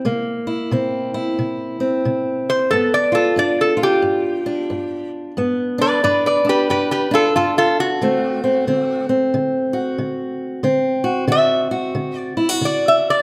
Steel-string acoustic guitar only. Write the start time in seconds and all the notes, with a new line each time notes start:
Already playing: E4
0.05 C3 A#3
0.47 E4
0.71 C3 C4
1.14 E4
1.39 C3
1.80 C4
2.05 C3
2.71 G2 B3
3.12 F4
3.36 G2 D4
3.77 F4
4.02 G2
4.46 D4
4.70 G2
5.37 G2 B3
5.78 D4
6.04 G2 D4
6.45 D4
6.69 G2
7.11 D4
7.36 G2
8.01 D3 A3 C4
8.44 C4
8.67 D3 C4
9.09 C4
9.34 D3
9.73 F#4
9.98 D3
10.63 D3 C4
11.04 F#4
11.28 D3 F#4
11.71 F#4
11.95 D3
12.37 E4
12.49 F#4
12.61 D3